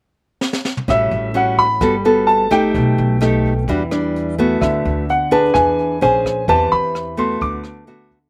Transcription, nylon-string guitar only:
0, 0, Header, 1, 2, 480
1, 0, Start_track
1, 0, Key_signature, 2, "major"
1, 0, Tempo, 466563
1, 901, Time_signature, 4, 2, 24, 8
1, 8537, End_track
2, 0, Start_track
2, 0, Title_t, "Nylon-string guitar"
2, 0, Program_c, 0, 24
2, 905, Note_on_c, 0, 55, 48
2, 906, Note_on_c, 0, 45, 47
2, 907, Note_on_c, 0, 61, 50
2, 915, Note_on_c, 0, 66, 54
2, 1344, Note_off_c, 0, 55, 0
2, 1346, Note_off_c, 0, 61, 0
2, 1348, Note_off_c, 0, 66, 0
2, 1380, Note_on_c, 0, 55, 56
2, 1385, Note_on_c, 0, 61, 60
2, 1392, Note_on_c, 0, 66, 58
2, 1703, Note_off_c, 0, 55, 0
2, 1706, Note_off_c, 0, 61, 0
2, 1708, Note_off_c, 0, 66, 0
2, 1840, Note_off_c, 0, 45, 0
2, 1858, Note_on_c, 0, 55, 59
2, 1861, Note_on_c, 0, 59, 51
2, 1864, Note_on_c, 0, 66, 61
2, 1873, Note_on_c, 0, 69, 62
2, 2002, Note_off_c, 0, 59, 0
2, 2002, Note_off_c, 0, 66, 0
2, 2003, Note_off_c, 0, 69, 0
2, 2108, Note_on_c, 0, 59, 53
2, 2112, Note_on_c, 0, 66, 58
2, 2115, Note_on_c, 0, 69, 59
2, 2546, Note_off_c, 0, 59, 0
2, 2548, Note_off_c, 0, 69, 0
2, 2549, Note_off_c, 0, 66, 0
2, 2575, Note_off_c, 0, 55, 0
2, 2579, Note_on_c, 0, 57, 66
2, 2584, Note_on_c, 0, 63, 66
2, 2587, Note_on_c, 0, 67, 71
2, 2824, Note_on_c, 0, 47, 53
2, 3261, Note_off_c, 0, 57, 0
2, 3264, Note_off_c, 0, 63, 0
2, 3265, Note_off_c, 0, 67, 0
2, 3299, Note_on_c, 0, 57, 62
2, 3307, Note_on_c, 0, 63, 62
2, 3314, Note_on_c, 0, 67, 62
2, 3622, Note_off_c, 0, 57, 0
2, 3627, Note_off_c, 0, 63, 0
2, 3628, Note_off_c, 0, 67, 0
2, 3758, Note_off_c, 0, 47, 0
2, 3793, Note_on_c, 0, 52, 56
2, 3795, Note_on_c, 0, 55, 58
2, 3797, Note_on_c, 0, 62, 49
2, 3800, Note_on_c, 0, 66, 62
2, 3929, Note_off_c, 0, 55, 0
2, 3929, Note_off_c, 0, 62, 0
2, 3931, Note_off_c, 0, 66, 0
2, 4026, Note_on_c, 0, 55, 55
2, 4029, Note_on_c, 0, 62, 59
2, 4465, Note_off_c, 0, 55, 0
2, 4465, Note_off_c, 0, 62, 0
2, 4511, Note_on_c, 0, 57, 58
2, 4518, Note_on_c, 0, 59, 63
2, 4522, Note_on_c, 0, 66, 66
2, 4723, Note_off_c, 0, 52, 0
2, 4742, Note_on_c, 0, 50, 54
2, 5187, Note_off_c, 0, 57, 0
2, 5191, Note_off_c, 0, 59, 0
2, 5192, Note_off_c, 0, 66, 0
2, 5465, Note_on_c, 0, 62, 59
2, 5470, Note_on_c, 0, 68, 62
2, 5473, Note_on_c, 0, 71, 74
2, 5677, Note_off_c, 0, 50, 0
2, 5711, Note_on_c, 0, 52, 52
2, 6145, Note_off_c, 0, 62, 0
2, 6146, Note_off_c, 0, 68, 0
2, 6147, Note_off_c, 0, 71, 0
2, 6161, Note_off_c, 0, 52, 0
2, 6186, Note_on_c, 0, 61, 49
2, 6195, Note_on_c, 0, 68, 51
2, 6195, Note_on_c, 0, 72, 58
2, 6625, Note_off_c, 0, 61, 0
2, 6628, Note_off_c, 0, 68, 0
2, 6629, Note_off_c, 0, 72, 0
2, 6666, Note_on_c, 0, 52, 50
2, 6673, Note_on_c, 0, 60, 51
2, 6675, Note_on_c, 0, 71, 61
2, 6678, Note_on_c, 0, 67, 46
2, 7349, Note_off_c, 0, 60, 0
2, 7349, Note_off_c, 0, 67, 0
2, 7350, Note_off_c, 0, 71, 0
2, 7380, Note_on_c, 0, 57, 64
2, 7389, Note_on_c, 0, 59, 62
2, 7394, Note_on_c, 0, 66, 68
2, 7602, Note_off_c, 0, 52, 0
2, 7624, Note_on_c, 0, 50, 54
2, 8064, Note_off_c, 0, 57, 0
2, 8069, Note_off_c, 0, 59, 0
2, 8069, Note_off_c, 0, 66, 0
2, 8098, Note_on_c, 0, 57, 59
2, 8103, Note_on_c, 0, 59, 51
2, 8105, Note_on_c, 0, 66, 62
2, 8411, Note_off_c, 0, 57, 0
2, 8411, Note_off_c, 0, 66, 0
2, 8412, Note_off_c, 0, 59, 0
2, 8537, Note_off_c, 0, 50, 0
2, 8537, End_track
0, 0, End_of_file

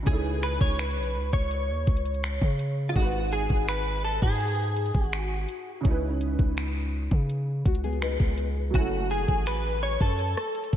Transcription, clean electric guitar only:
0, 0, Header, 1, 2, 480
1, 0, Start_track
1, 0, Key_signature, 4, "minor"
1, 0, Tempo, 722892
1, 43, Time_signature, 4, 2, 24, 8
1, 7149, End_track
2, 0, Start_track
2, 0, Title_t, "Clean electric guitar"
2, 0, Program_c, 0, 27
2, 46, Note_on_c, 0, 68, 89
2, 288, Note_on_c, 0, 71, 90
2, 292, Note_off_c, 0, 68, 0
2, 403, Note_off_c, 0, 71, 0
2, 406, Note_on_c, 0, 73, 99
2, 526, Note_off_c, 0, 73, 0
2, 526, Note_on_c, 0, 71, 98
2, 882, Note_off_c, 0, 71, 0
2, 885, Note_on_c, 0, 73, 84
2, 1697, Note_off_c, 0, 73, 0
2, 1920, Note_on_c, 0, 65, 64
2, 1965, Note_off_c, 0, 65, 0
2, 1967, Note_on_c, 0, 66, 88
2, 2208, Note_on_c, 0, 68, 86
2, 2212, Note_off_c, 0, 66, 0
2, 2429, Note_off_c, 0, 68, 0
2, 2448, Note_on_c, 0, 71, 104
2, 2683, Note_off_c, 0, 71, 0
2, 2686, Note_on_c, 0, 69, 93
2, 2803, Note_off_c, 0, 69, 0
2, 2806, Note_on_c, 0, 68, 83
2, 3357, Note_off_c, 0, 68, 0
2, 3357, Note_on_c, 0, 66, 83
2, 3618, Note_off_c, 0, 66, 0
2, 5810, Note_on_c, 0, 66, 85
2, 6030, Note_off_c, 0, 66, 0
2, 6048, Note_on_c, 0, 68, 83
2, 6285, Note_off_c, 0, 68, 0
2, 6288, Note_on_c, 0, 71, 100
2, 6523, Note_off_c, 0, 71, 0
2, 6526, Note_on_c, 0, 73, 105
2, 6646, Note_off_c, 0, 73, 0
2, 6649, Note_on_c, 0, 69, 85
2, 7149, Note_off_c, 0, 69, 0
2, 7149, End_track
0, 0, End_of_file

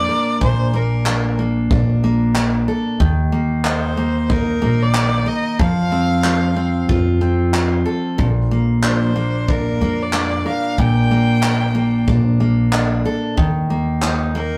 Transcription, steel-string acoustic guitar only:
0, 0, Header, 1, 2, 480
1, 0, Start_track
1, 0, Tempo, 647948
1, 306, Time_signature, 4, 2, 24, 8
1, 10798, End_track
2, 0, Start_track
2, 0, Title_t, "Steel-string acoustic guitar"
2, 0, Program_c, 0, 25
2, 0, Note_on_c, 0, 46, 72
2, 0, Note_on_c, 0, 58, 56
2, 0, Note_on_c, 0, 62, 52
2, 66, Note_on_c, 0, 70, 52
2, 294, Note_off_c, 0, 46, 0
2, 303, Note_on_c, 0, 46, 75
2, 542, Note_off_c, 0, 58, 0
2, 545, Note_on_c, 0, 58, 53
2, 784, Note_off_c, 0, 62, 0
2, 787, Note_on_c, 0, 62, 52
2, 1025, Note_off_c, 0, 58, 0
2, 1028, Note_on_c, 0, 58, 51
2, 1260, Note_off_c, 0, 62, 0
2, 1269, Note_on_c, 0, 62, 54
2, 1506, Note_off_c, 0, 58, 0
2, 1509, Note_on_c, 0, 58, 57
2, 1737, Note_off_c, 0, 62, 0
2, 1746, Note_on_c, 0, 62, 52
2, 1982, Note_off_c, 0, 70, 0
2, 1985, Note_on_c, 0, 69, 52
2, 2222, Note_on_c, 0, 51, 78
2, 2224, Note_off_c, 0, 46, 0
2, 2283, Note_off_c, 0, 62, 0
2, 2283, Note_off_c, 0, 69, 0
2, 2458, Note_off_c, 0, 58, 0
2, 2461, Note_on_c, 0, 58, 53
2, 2703, Note_on_c, 0, 63, 48
2, 2934, Note_off_c, 0, 58, 0
2, 2943, Note_on_c, 0, 58, 52
2, 3172, Note_off_c, 0, 63, 0
2, 3181, Note_on_c, 0, 63, 49
2, 3412, Note_off_c, 0, 58, 0
2, 3421, Note_on_c, 0, 58, 58
2, 3650, Note_off_c, 0, 63, 0
2, 3659, Note_on_c, 0, 63, 51
2, 3897, Note_on_c, 0, 70, 53
2, 4144, Note_off_c, 0, 51, 0
2, 4144, Note_on_c, 0, 53, 80
2, 4199, Note_off_c, 0, 70, 0
2, 4200, Note_off_c, 0, 63, 0
2, 4201, Note_off_c, 0, 58, 0
2, 4384, Note_on_c, 0, 60, 52
2, 4623, Note_on_c, 0, 65, 50
2, 4853, Note_off_c, 0, 60, 0
2, 4862, Note_on_c, 0, 60, 51
2, 5100, Note_off_c, 0, 65, 0
2, 5103, Note_on_c, 0, 65, 56
2, 5333, Note_off_c, 0, 60, 0
2, 5342, Note_on_c, 0, 60, 56
2, 5577, Note_off_c, 0, 65, 0
2, 5580, Note_on_c, 0, 65, 49
2, 5820, Note_on_c, 0, 69, 55
2, 6061, Note_on_c, 0, 46, 79
2, 6120, Note_off_c, 0, 69, 0
2, 6122, Note_off_c, 0, 60, 0
2, 6307, Note_on_c, 0, 58, 49
2, 6542, Note_off_c, 0, 65, 0
2, 6545, Note_on_c, 0, 62, 48
2, 6736, Note_off_c, 0, 53, 0
2, 6780, Note_off_c, 0, 58, 0
2, 6783, Note_on_c, 0, 58, 53
2, 7022, Note_off_c, 0, 62, 0
2, 7025, Note_on_c, 0, 62, 56
2, 7267, Note_off_c, 0, 58, 0
2, 7270, Note_on_c, 0, 58, 56
2, 7504, Note_off_c, 0, 62, 0
2, 7507, Note_on_c, 0, 62, 50
2, 7746, Note_on_c, 0, 70, 56
2, 7982, Note_off_c, 0, 46, 0
2, 7991, Note_on_c, 0, 46, 78
2, 8227, Note_off_c, 0, 58, 0
2, 8230, Note_on_c, 0, 58, 53
2, 8461, Note_off_c, 0, 62, 0
2, 8464, Note_on_c, 0, 62, 50
2, 8699, Note_off_c, 0, 58, 0
2, 8702, Note_on_c, 0, 58, 51
2, 8936, Note_off_c, 0, 62, 0
2, 8945, Note_on_c, 0, 62, 56
2, 9185, Note_off_c, 0, 58, 0
2, 9188, Note_on_c, 0, 58, 55
2, 9419, Note_off_c, 0, 62, 0
2, 9428, Note_on_c, 0, 62, 52
2, 9667, Note_off_c, 0, 70, 0
2, 9670, Note_on_c, 0, 69, 57
2, 9907, Note_on_c, 0, 51, 77
2, 9911, Note_off_c, 0, 46, 0
2, 9966, Note_off_c, 0, 62, 0
2, 9967, Note_off_c, 0, 69, 0
2, 10147, Note_off_c, 0, 58, 0
2, 10150, Note_on_c, 0, 58, 57
2, 10391, Note_on_c, 0, 63, 52
2, 10621, Note_off_c, 0, 58, 0
2, 10630, Note_on_c, 0, 58, 56
2, 10798, Note_off_c, 0, 51, 0
2, 10798, Note_off_c, 0, 58, 0
2, 10798, Note_off_c, 0, 63, 0
2, 10798, End_track
0, 0, End_of_file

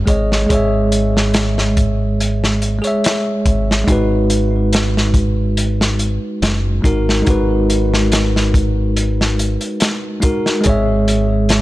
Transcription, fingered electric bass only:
0, 0, Header, 1, 2, 480
1, 0, Start_track
1, 0, Key_signature, 5, "minor"
1, 0, Tempo, 845070
1, 286, Time_signature, 4, 2, 24, 8
1, 6598, End_track
2, 0, Start_track
2, 0, Title_t, "Fingered electric bass"
2, 0, Program_c, 0, 33
2, 41, Note_on_c, 0, 32, 84
2, 257, Note_off_c, 0, 32, 0
2, 284, Note_on_c, 0, 32, 86
2, 1588, Note_off_c, 0, 32, 0
2, 1963, Note_on_c, 0, 32, 72
2, 2177, Note_off_c, 0, 32, 0
2, 2201, Note_on_c, 0, 32, 90
2, 3507, Note_off_c, 0, 32, 0
2, 3648, Note_on_c, 0, 30, 90
2, 3860, Note_off_c, 0, 30, 0
2, 3886, Note_on_c, 0, 32, 81
2, 4099, Note_off_c, 0, 32, 0
2, 4132, Note_on_c, 0, 32, 93
2, 5432, Note_off_c, 0, 32, 0
2, 6055, Note_on_c, 0, 32, 94
2, 6598, Note_off_c, 0, 32, 0
2, 6598, End_track
0, 0, End_of_file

